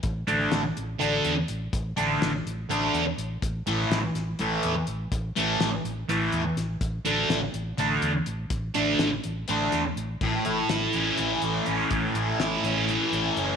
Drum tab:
CC |-------|-------|-------|-------|
HH |xxxxxxx|xxxxxxx|xxxxxxx|xxxxxxx|
SD |--o----|--o----|--oo---|--o-o-o|
BD |o------|o------|o------|o------|

CC |-------|-------|x------|-------|
HH |xxxxxxx|xxxxxxx|-xxxxxx|xxxxxxx|
SD |--o----|--o--o-|--o----|--o----|
BD |o------|o------|o------|o------|